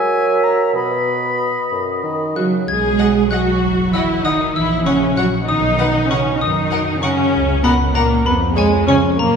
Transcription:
0.00 0.77 F#3 medium
0.00 0.77 A#4 medium
0.00 0.77 E5 medium
0.00 0.45 G#5 medium
0.44 0.74 A#5 medium
0.75 1.54 B2 soft
0.75 2.36 B4 soft
0.75 2.36 D#5 soft
0.75 2.33 B5 medium
1.71 2.01 F#2 soft
2.04 2.38 D#3 soft
2.36 2.68 C#3 soft
2.36 2.65 F#3 soft
2.36 2.44 F#4 medium
2.36 2.66 F#6 soft
2.68 3.47 B1 medium
2.68 3.29 G#3 medium
2.68 3.29 G#4 medium
2.68 3.27 G#6 medium
2.99 3.07 D#5 soft
2.99 3.07 F#5 soft
2.99 3.08 F#5 soft
3.30 3.93 F#3 medium
3.30 3.92 F#4 medium
3.30 3.39 D#5 soft
3.30 3.39 F#5 soft
3.30 3.89 F#6 medium
3.62 4.40 F#1 soft
3.93 4.24 E3 medium
3.93 4.24 E4 medium
3.93 4.01 D#5 soft
3.93 4.02 F#5 soft
3.93 4.22 E6 medium
4.24 4.54 D#3 medium
4.24 4.55 D#4 medium
4.24 4.32 D#5 soft
4.24 4.32 F#5 soft
4.24 4.33 F#5 soft
4.24 4.53 D#6 medium
4.55 5.32 A#1 medium
4.55 4.86 E3 medium
4.55 4.85 E4 medium
4.55 4.84 E6 medium
4.86 5.17 C#3 medium
4.86 5.16 C#4 medium
4.86 4.94 C#5 soft
4.86 4.94 F#5 soft
4.86 5.15 C#6 medium
5.17 5.25 F#3 medium
5.17 5.25 F#4 medium
5.17 5.25 C#5 soft
5.17 5.25 F#5 soft
5.17 5.46 F#6 medium
5.47 6.25 B1 soft
5.47 6.08 D#3 medium
5.47 6.08 D#4 medium
5.47 6.06 D#6 medium
5.79 5.87 B4 soft
5.79 5.87 F#5 soft
6.09 6.17 C#3 medium
6.09 6.40 C#4 medium
6.09 6.18 B4 soft
6.09 6.17 F#5 soft
6.09 6.18 F#5 soft
6.09 6.39 C#6 medium
6.40 7.17 F#2 medium
6.40 7.01 D#3 medium
6.40 7.02 D#4 medium
6.40 6.99 D#6 medium
6.71 6.79 A#4 soft
6.71 6.79 F#5 soft
7.02 7.64 C#3 medium
7.02 7.62 C#4 medium
7.02 7.10 A#4 soft
7.02 7.10 F#5 soft
7.02 7.60 C#6 medium
7.33 8.10 C#2 medium
7.63 7.72 B2 medium
7.63 7.72 B3 medium
7.63 7.72 A#4 soft
7.63 7.71 F#5 soft
7.63 7.72 F#5 soft
7.63 7.93 B5 medium
7.94 8.25 A#2 medium
7.94 8.25 A#3 medium
7.94 8.03 A#4 soft
7.94 8.03 F#5 medium
7.94 8.03 F#5 soft
7.94 8.24 A#5 medium
8.25 9.03 F2 medium
8.25 8.33 B2 medium
8.25 8.34 B3 medium
8.25 8.55 B5 medium
8.56 8.64 G#2 medium
8.56 8.87 G#3 medium
8.56 8.65 C#5 medium
8.56 8.65 G#5 soft
8.56 8.86 G#5 medium
8.87 8.95 C#3 medium
8.87 8.95 C#4 medium
8.87 8.96 C#5 soft
8.87 8.96 G#5 medium
8.87 9.16 C#6 medium
9.18 9.36 F#2 medium
9.18 9.36 A#2 medium
9.18 9.36 A#3 medium
9.18 9.36 A#5 medium

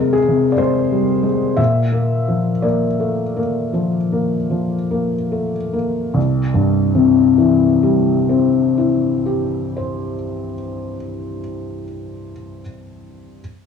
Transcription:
0.00 0.16 C3 soft
0.00 0.59 G#3 soft
0.00 0.13 A#4 medium
0.13 0.52 G#4 medium
0.28 0.78 C3 soft
0.52 0.60 D5 medium
0.58 1.11 G#3 soft
0.58 1.57 C5 medium
0.91 1.24 G3 soft
1.23 1.57 G#3 soft
1.57 3.70 A#2 soft
1.57 2.63 E5 medium
1.92 2.49 A#3 soft
2.28 2.86 F3 soft
2.62 3.22 A#3 soft
2.62 5.52 D5 soft
3.00 3.37 A3 soft
3.36 3.97 A#3 soft
3.73 4.35 F3 soft
4.12 4.75 A#3 soft
4.50 5.15 F3 soft
4.91 5.57 A#3 soft
5.32 5.74 A3 soft
5.73 6.15 A#3 soft
6.14 10.15 C2 soft
6.54 10.55 G2 soft
6.95 10.96 C3 soft
7.38 11.39 E3 soft
7.83 11.84 G3 soft
8.29 12.30 C4 soft
8.77 12.61 E4 soft
9.26 12.61 G4 soft
9.76 12.61 C5 soft

